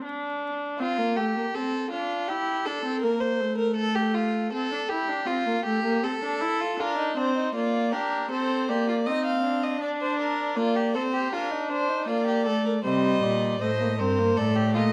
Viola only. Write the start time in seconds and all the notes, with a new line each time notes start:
0.04 D4
0.80 C4
0.98 A#3
1.17 A3
1.36 A#3
1.55 C4
1.92 D4
2.30 E4
2.66 D4
2.85 C4
3.03 A#3
3.40 A3
4.53 C4
4.72 D4
4.90 E4
5.09 D4
5.28 C4
5.47 A#3
5.66 A3
5.84 A#3
6.03 C4
6.22 D4
6.41 E4
6.61 F4
6.79 D4
7.17 C4
7.55 A#3
7.93 D4
8.31 C4
8.69 A#3
9.06 C4
9.81 D4
10.57 A#3
10.95 C4
11.33 D4
12.09 A#3
12.47 A3
12.85 G3
13.62 A3
13.81 A#3
14.00 C4
14.19 A#3
14.38 A3